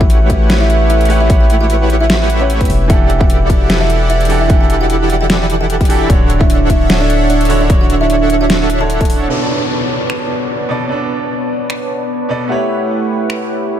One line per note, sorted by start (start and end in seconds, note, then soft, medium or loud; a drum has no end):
0.00 2.68 A1 medium
0.00 0.28 A3 loud
0.00 1.07 A3 medium
0.00 0.28 E4 medium
0.00 0.22 F#4 medium
0.00 0.28 G4 medium
0.00 1.07 G4 medium
0.00 0.28 B4 medium
0.00 1.08 B4 medium
0.00 0.28 C#5 medium
0.00 1.08 C#5 medium
0.00 0.28 F#5 loud
0.00 1.09 F#5 loud
0.00 0.22 F#5 medium
0.00 kick loud
0.10 closed hi-hat medium
0.30 1.28 A3 medium
0.30 1.28 E4 medium
0.30 0.52 F#4 medium
0.30 1.28 G4 medium
0.30 1.28 B4 medium
0.30 1.28 C#5 medium
0.30 0.52 F#5 medium
0.30 1.28 F#5 medium
0.30 kick medium
0.30 closed hi-hat medium
0.50 snare loud
0.50 closed hi-hat medium
0.61 0.82 E4 medium
0.61 0.82 E5 loud
0.70 closed hi-hat medium
0.90 1.12 E4 medium
0.90 1.12 E5 medium
0.90 closed hi-hat medium
1.01 closed hi-hat soft
1.05 1.26 A3 loud
1.05 1.27 G4 medium
1.05 closed hi-hat medium
1.10 1.28 B4 medium
1.10 1.28 C#5 medium
1.10 1.28 F#5 loud
1.10 open hi-hat medium
1.21 1.35 E4 medium
1.21 1.35 E5 medium
1.28 2.37 A3 medium
1.28 1.88 A3 loud
1.28 1.88 E4 medium
1.28 2.38 G4 medium
1.28 1.88 G4 medium
1.28 2.38 B4 medium
1.28 1.88 B4 medium
1.28 1.88 C#5 medium
1.28 2.39 C#5 medium
1.28 1.88 F#5 loud
1.28 kick loud
1.28 closed hi-hat medium
1.32 2.40 F#5 loud
1.40 1.55 G4 medium
1.40 1.55 G5 loud
1.50 closed hi-hat medium
1.61 1.89 F#4 medium
1.61 1.89 F#5 loud
1.70 closed hi-hat medium
1.90 2.28 A3 loud
1.90 2.28 E4 loud
1.90 2.28 G4 loud
1.90 2.28 B4 loud
1.90 2.28 C#5 medium
1.90 2.28 F#5 loud
1.90 closed hi-hat medium
2.00 2.29 E4 medium
2.00 2.29 E5 medium
2.10 snare loud
2.10 closed hi-hat medium
2.30 2.69 A3 medium
2.30 2.69 E4 medium
2.30 2.69 G4 medium
2.30 2.69 B4 medium
2.30 2.69 C#5 medium
2.30 2.69 E5 medium
2.30 closed hi-hat medium
2.40 2.68 A3 medium
2.40 2.55 C#4 medium
2.40 2.68 G4 medium
2.40 2.69 B4 medium
2.40 2.55 C#5 medium
2.40 2.69 C#5 medium
2.40 2.69 F#5 medium
2.50 closed hi-hat medium
2.61 2.82 B3 medium
2.61 2.82 B4 medium
2.61 kick medium
2.61 closed hi-hat soft
2.65 closed hi-hat medium
2.70 6.08 E1 medium
2.70 open hi-hat medium
2.88 4.27 E3 loud
2.88 3.48 E3 loud
2.88 4.27 D4 medium
2.88 3.12 E4 medium
2.88 3.48 E4 medium
2.88 3.48 G4 medium
2.88 4.28 G4 medium
2.88 3.48 A4 medium
2.88 4.29 A4 loud
2.88 3.48 D5 medium
2.88 3.12 E5 loud
2.88 4.28 F#5 medium
2.88 3.48 F#5 loud
2.88 kick loud
2.88 closed hi-hat medium
3.10 closed hi-hat medium
3.21 3.42 F#4 medium
3.21 3.42 F#5 loud
3.21 kick loud
3.30 closed hi-hat medium
3.50 4.48 E3 medium
3.50 4.48 E4 medium
3.50 3.72 F#4 medium
3.50 4.48 G4 medium
3.50 4.48 A4 medium
3.50 4.48 D5 medium
3.50 3.72 F#5 medium
3.50 4.48 F#5 medium
3.50 kick medium
3.50 closed hi-hat medium
3.70 snare loud
3.70 closed hi-hat medium
3.81 4.02 E4 medium
3.81 4.02 E5 medium
3.90 closed hi-hat medium
4.10 4.32 E4 medium
4.10 4.32 E5 loud
4.10 closed hi-hat medium
4.21 closed hi-hat soft
4.25 4.46 E3 loud
4.25 closed hi-hat medium
4.29 4.47 D4 medium
4.29 4.48 F#4 medium
4.29 4.48 G4 medium
4.29 4.48 A4 loud
4.29 open hi-hat medium
4.41 4.55 E4 medium
4.41 4.55 E5 medium
4.48 5.87 E3 loud
4.48 5.08 E3 loud
4.48 5.87 D4 medium
4.48 5.08 E4 medium
4.48 5.08 G4 medium
4.48 5.88 G4 medium
4.48 5.08 A4 medium
4.48 5.89 A4 loud
4.48 5.08 D5 medium
4.48 5.08 F#5 loud
4.48 5.88 F#5 medium
4.48 kick loud
4.48 closed hi-hat medium
4.61 4.75 G4 medium
4.61 4.75 G5 medium
4.70 closed hi-hat medium
4.81 5.09 F#4 medium
4.81 5.09 F#5 loud
4.90 closed hi-hat medium
5.10 5.88 E3 loud
5.10 5.88 E4 medium
5.10 5.88 G4 medium
5.10 5.88 A4 loud
5.10 5.88 D5 medium
5.10 5.88 F#5 loud
5.10 closed hi-hat medium
5.21 5.49 G4 medium
5.21 5.49 G5 loud
5.30 snare loud
5.30 closed hi-hat medium
5.50 closed hi-hat medium
5.61 5.75 G4 medium
5.61 5.75 G5 medium
5.70 closed hi-hat medium
5.81 6.02 G4 medium
5.81 6.02 G5 medium
5.81 kick medium
5.81 closed hi-hat soft
5.85 6.07 E3 loud
5.85 closed hi-hat medium
5.89 6.08 E3 loud
5.89 6.07 D4 medium
5.89 6.08 E4 medium
5.89 6.08 F#4 medium
5.89 6.08 G4 medium
5.89 6.08 A4 medium
5.89 6.08 A4 loud
5.89 6.08 D5 medium
5.89 6.08 E5 loud
5.89 open hi-hat loud
6.08 9.28 D1 medium
6.08 7.47 D3 medium
6.08 7.47 D4 medium
6.08 6.32 D4 medium
6.08 6.68 D4 loud
6.08 7.48 F#4 medium
6.08 6.68 A4 medium
6.08 6.68 C#5 medium
6.08 7.49 C#5 loud
6.08 6.32 D5 loud
6.08 6.68 E5 medium
6.08 6.68 F#5 loud
6.08 kick loud
6.08 closed hi-hat medium
6.30 closed hi-hat medium
6.41 6.62 E4 medium
6.41 6.62 E5 medium
6.41 kick loud
6.50 closed hi-hat medium
6.70 7.68 D4 medium
6.70 6.92 E4 medium
6.70 7.68 A4 medium
6.70 7.68 C#5 medium
6.70 6.92 E5 medium
6.70 7.68 E5 medium
6.70 7.68 F#5 medium
6.70 kick medium
6.70 closed hi-hat medium
6.90 snare loud
6.90 closed hi-hat medium
7.01 7.22 D4 medium
7.01 7.22 D5 loud
7.10 closed hi-hat medium
7.30 7.52 D4 medium
7.30 7.52 D5 loud
7.30 closed hi-hat medium
7.41 closed hi-hat medium
7.45 7.66 D3 loud
7.45 closed hi-hat medium
7.49 7.67 D4 medium
7.49 7.68 F#4 loud
7.49 7.68 C#5 loud
7.49 open hi-hat loud
7.61 7.75 D4 medium
7.61 7.75 D5 loud
7.68 8.77 D3 medium
7.68 8.78 D4 medium
7.68 8.79 F#4 medium
7.68 8.80 C#5 loud
7.68 kick loud
7.68 closed hi-hat medium
7.81 7.95 F#4 medium
7.81 7.95 F#5 medium
7.90 closed hi-hat medium
8.01 8.29 E4 medium
8.01 8.29 E5 loud
8.10 closed hi-hat medium
8.30 8.68 D4 loud
8.30 8.68 A4 loud
8.30 8.68 C#5 medium
8.30 8.68 E5 loud
8.30 8.68 F#5 loud
8.30 closed hi-hat medium
8.41 8.69 F#4 medium
8.41 8.69 F#5 loud
8.50 snare loud
8.50 closed hi-hat medium
8.70 9.28 D4 medium
8.70 9.28 A4 medium
8.70 9.28 C#5 medium
8.70 9.28 E5 medium
8.70 9.28 F#5 loud
8.70 closed hi-hat medium
8.79 9.27 D3 medium
8.79 9.27 D4 medium
8.79 9.28 F#4 medium
8.79 8.95 A4 medium
8.79 9.29 C#5 medium
8.79 8.95 A5 medium
8.90 closed hi-hat medium
9.01 9.22 A4 medium
9.01 9.22 A5 medium
9.01 kick medium
9.01 closed hi-hat soft
9.05 closed hi-hat medium
9.10 open hi-hat loud
9.28 10.67 B2 medium
9.28 10.67 B3 medium
9.28 12.48 B3 medium
9.28 10.68 A4 medium
9.28 12.48 B4 medium
9.28 12.48 C#5 medium
9.28 12.48 D5 medium
9.28 12.48 A5 medium
9.28 downlifter medium
9.32 10.69 D4 loud
10.10 finger snap medium
10.69 10.86 B2 loud
10.69 10.87 B3 medium
10.69 10.88 A4 medium
10.69 10.88 D5 loud
10.88 12.27 B2 medium
10.88 12.27 B3 medium
10.88 12.28 A4 medium
10.92 12.29 D4 medium
11.70 finger snap medium
12.29 12.47 B2 medium
12.29 12.47 B3 medium
12.29 12.48 A4 medium
12.29 12.48 D5 loud
12.48 13.80 A3 medium
12.48 13.80 E4 medium
12.48 13.80 G4 medium
12.48 13.80 B4 medium
12.48 13.80 C#5 medium
12.48 13.80 F#5 medium
12.52 13.80 C#5 loud
13.30 finger snap medium